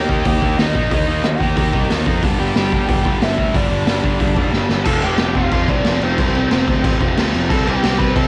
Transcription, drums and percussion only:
0.09 kick medium
0.25 kick loud
0.25 open hi-hat medium
0.42 kick medium
0.59 snare loud
0.59 open hi-hat medium
0.75 kick medium
0.91 kick loud
0.91 open hi-hat medium
1.24 snare loud
1.24 open hi-hat medium
1.41 kick medium
1.57 kick loud
1.57 open hi-hat medium
1.73 kick medium
1.90 snare loud
1.90 open hi-hat medium
2.06 kick medium
2.23 kick loud
2.23 open hi-hat medium
2.55 snare loud
2.55 open hi-hat medium
2.72 kick medium
2.88 kick loud
2.88 open hi-hat medium
3.05 kick medium
3.22 snare loud
3.22 open hi-hat medium
3.38 kick medium
3.54 kick loud
3.54 open hi-hat medium
3.87 snare loud
3.87 open hi-hat medium
4.04 kick medium
4.20 kick loud
4.20 open hi-hat medium
4.37 kick medium
4.53 snare medium
4.69 snare medium
4.85 kick loud
4.85 crash loud
4.85 crash medium
5.02 crash medium
5.18 snare loud
5.18 crash medium
5.35 kick medium
5.35 crash medium
5.52 kick loud
5.52 crash medium
5.68 kick medium
5.68 crash medium
5.85 snare loud
5.85 crash medium
6.01 crash medium
6.18 kick loud
6.18 crash medium
6.35 crash medium
6.51 snare loud
6.51 crash medium
6.68 kick medium
6.68 crash medium
6.84 kick loud
6.84 crash medium
7.01 kick medium
7.01 crash medium
7.17 snare loud
7.17 crash medium
7.34 crash medium
7.50 kick loud
7.50 crash medium
7.67 crash medium
7.83 snare loud
7.83 crash medium
7.99 kick medium
7.99 crash medium
8.16 kick loud
8.16 crash medium

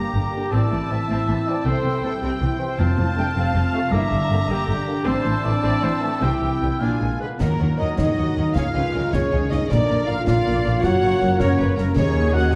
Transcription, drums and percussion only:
7.40 concert bass drum medium
7.40 snare medium
7.40 crash soft
7.98 concert bass drum medium
7.98 snare medium
8.56 concert bass drum medium
8.56 snare medium
9.13 concert bass drum medium
9.13 snare medium
9.52 snare soft
9.71 concert bass drum medium
9.71 snare medium
10.27 concert bass drum medium
10.27 snare medium
10.83 concert bass drum medium
10.83 snare medium
11.40 concert bass drum medium
11.40 snare medium
11.78 snare medium
11.96 concert bass drum medium
11.96 snare medium
11.96 crash soft

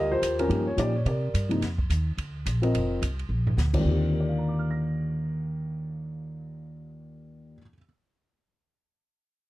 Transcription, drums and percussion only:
0.22 kick soft
0.22 hi-hat pedal medium
0.22 ride medium
0.39 ride soft
0.50 kick soft
0.50 ride medium
0.78 kick soft
0.78 hi-hat pedal medium
0.78 ride medium
1.06 kick soft
1.06 ride soft
1.34 kick soft
1.34 hi-hat pedal medium
1.34 ride medium
1.51 ride soft
1.62 kick soft
1.62 snare soft
1.62 ride soft
1.78 kick soft
1.90 kick soft
1.90 hi-hat pedal medium
1.90 ride medium
2.18 kick soft
2.18 ride soft
2.46 kick soft
2.46 hi-hat pedal medium
2.46 ride medium
2.63 ride soft
2.74 kick soft
2.74 ride medium
3.02 kick soft
3.02 hi-hat pedal medium
3.02 ride medium
3.19 ride soft
3.47 floor tom medium
3.58 snare soft
3.58 hi-hat pedal medium
3.74 kick medium
3.74 crash medium

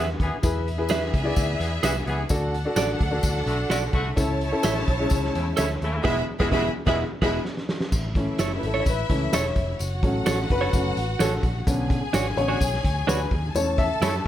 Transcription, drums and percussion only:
0.20 kick medium
0.20 closed hi-hat medium
0.43 kick loud
0.43 closed hi-hat medium
0.43 tambourine medium
0.68 closed hi-hat medium
0.89 snare loud
0.89 closed hi-hat medium
0.89 tambourine medium
1.14 kick medium
1.14 closed hi-hat medium
1.36 kick medium
1.36 closed hi-hat medium
1.36 tambourine medium
1.61 closed hi-hat medium
1.83 snare loud
1.83 closed hi-hat medium
1.83 tambourine medium
2.07 closed hi-hat medium
2.29 kick loud
2.29 closed hi-hat medium
2.29 tambourine medium
2.54 closed hi-hat medium
2.76 snare loud
2.76 closed hi-hat medium
2.76 tambourine medium
3.01 kick medium
3.01 closed hi-hat medium
3.23 kick medium
3.23 closed hi-hat medium
3.23 tambourine medium
3.36 snare soft
3.47 closed hi-hat medium
3.70 snare loud
3.70 closed hi-hat medium
3.70 tambourine loud
3.93 kick medium
3.93 closed hi-hat medium
4.17 kick loud
4.17 closed hi-hat medium
4.17 tambourine medium
4.41 closed hi-hat medium
4.63 snare loud
4.63 closed hi-hat medium
4.63 tambourine medium
4.77 snare soft
4.88 kick medium
4.88 closed hi-hat medium
5.10 kick medium
5.10 closed hi-hat medium
5.10 tambourine medium
5.24 snare soft
5.35 closed hi-hat medium
5.57 snare medium
5.57 closed hi-hat medium
5.57 tambourine loud
5.82 closed hi-hat medium
6.05 kick loud
6.05 snare medium
6.05 crash medium
6.40 kick loud
6.40 snare loud
6.52 kick loud
6.52 snare loud
6.87 kick loud
6.87 snare loud
7.22 kick loud
7.22 snare loud
7.22 crash medium
7.45 snare medium
7.57 snare medium
7.69 snare medium
7.81 snare medium
7.92 kick loud
7.92 crash medium
7.92 tambourine medium
8.15 kick medium
8.15 closed hi-hat medium
8.38 snare loud
8.38 closed hi-hat medium
8.38 tambourine medium
8.63 closed hi-hat medium
8.86 kick medium
8.86 closed hi-hat medium
8.86 tambourine medium
9.10 kick medium
9.10 closed hi-hat medium
9.33 snare medium
9.33 closed hi-hat medium
9.33 tambourine loud
9.56 kick medium
9.56 closed hi-hat medium
9.79 closed hi-hat medium
9.79 tambourine medium
10.03 kick medium
10.03 closed hi-hat medium
10.26 snare loud
10.26 closed hi-hat medium
10.26 tambourine medium
10.50 kick medium
10.50 closed hi-hat medium
10.73 kick medium
10.73 closed hi-hat medium
10.73 tambourine medium
10.97 closed hi-hat medium
11.20 snare medium
11.20 closed hi-hat medium
11.20 tambourine loud
11.43 kick medium
11.43 closed hi-hat medium
11.67 kick loud
11.67 closed hi-hat medium
11.67 tambourine medium
11.90 kick loud
11.90 closed hi-hat medium
12.13 snare loud
12.13 closed hi-hat medium
12.13 tambourine medium
12.26 snare soft
12.38 closed hi-hat medium
12.61 kick medium
12.61 closed hi-hat medium
12.61 tambourine medium
12.74 snare soft
12.84 kick medium
12.84 closed hi-hat medium
13.08 snare medium
13.08 closed hi-hat medium
13.08 tambourine loud
13.31 kick medium
13.31 open hi-hat soft
13.55 closed hi-hat medium
13.55 tambourine medium
13.78 kick loud
13.78 closed hi-hat medium
14.02 snare loud
14.02 closed hi-hat medium
14.02 tambourine medium
14.14 snare soft

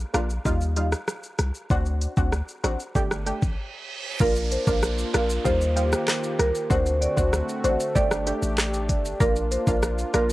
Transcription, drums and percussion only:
0.14 cross-stick loud
0.14 closed hi-hat medium
0.14 shaker medium
0.30 shaker medium
0.45 kick medium
0.45 shaker medium
0.61 shaker medium
0.76 closed hi-hat medium
0.76 shaker medium
0.92 cross-stick medium
0.92 shaker medium
1.08 cross-stick medium
1.08 shaker medium
1.23 shaker medium
1.39 cross-stick medium
1.39 closed hi-hat medium
1.39 shaker medium
1.55 shaker medium
1.70 kick loud
1.70 shaker medium
1.86 shaker medium
2.02 closed hi-hat medium
2.02 shaker medium
2.17 kick loud
2.17 shaker medium
2.33 cross-stick medium
2.33 shaker medium
2.48 shaker medium
2.64 cross-stick medium
2.64 closed hi-hat medium
2.64 shaker medium
2.80 shaker medium
2.95 kick medium
2.95 shaker medium
3.11 cross-stick medium
3.11 shaker medium
3.27 closed hi-hat medium
3.27 shaker medium
3.42 kick medium
3.42 shaker medium
4.20 kick loud
4.20 maracas medium
4.20 shaker medium
4.36 shaker medium
4.36 maracas medium
4.51 closed hi-hat medium
4.51 maracas medium
4.51 shaker medium
4.67 kick loud
4.67 shaker medium
4.67 maracas medium
4.83 cross-stick medium
4.83 maracas medium
4.83 shaker medium
4.98 maracas medium
4.98 shaker medium
5.14 cross-stick loud
5.14 closed hi-hat medium
5.14 shaker medium
5.14 maracas medium
5.30 maracas medium
5.30 shaker medium
5.45 kick medium
5.45 maracas medium
5.45 shaker medium
5.61 maracas medium
5.61 shaker medium
5.77 closed hi-hat medium
5.77 maracas medium
5.77 shaker medium
5.92 cross-stick medium
5.92 maracas medium
5.92 shaker medium
6.08 cross-stick loud
6.08 clap loud
6.08 maracas medium
6.08 shaker medium
6.24 shaker medium
6.24 maracas medium
6.39 cross-stick loud
6.39 closed hi-hat medium
6.39 shaker medium
6.55 maracas medium
6.55 shaker medium
6.70 kick loud
6.70 maracas medium
6.70 shaker medium
6.86 maracas medium
6.86 shaker medium
7.02 closed hi-hat medium
7.02 maracas medium
7.02 shaker medium
7.17 kick loud
7.17 shaker medium
7.17 maracas medium
7.33 cross-stick medium
7.33 shaker medium
7.33 maracas medium
7.49 shaker medium
7.49 maracas medium
7.64 closed hi-hat medium
7.64 shaker medium
7.64 maracas medium
7.80 maracas medium
7.80 shaker medium
7.96 kick medium
7.96 maracas medium
7.96 shaker medium
8.11 cross-stick loud
8.11 maracas medium
8.11 shaker medium
8.27 closed hi-hat medium
8.27 shaker medium
8.27 maracas soft
8.42 shaker medium
8.42 maracas medium
8.58 cross-stick loud
8.58 clap loud
8.58 maracas medium
8.58 shaker loud
8.73 shaker medium
8.73 maracas medium
8.89 kick medium
8.89 closed hi-hat medium
8.89 shaker medium
9.05 shaker medium
9.05 maracas medium
9.20 kick loud
9.20 maracas medium
9.20 shaker medium
9.36 maracas medium
9.36 shaker medium
9.51 closed hi-hat medium
9.51 maracas medium
9.51 shaker medium
9.67 kick loud
9.67 shaker medium
9.67 maracas medium
9.82 cross-stick medium
9.82 maracas medium
9.82 shaker medium
9.98 maracas medium
9.98 shaker medium
10.14 cross-stick loud
10.14 closed hi-hat medium
10.14 shaker medium
10.14 maracas medium
10.30 shaker medium
10.30 maracas medium

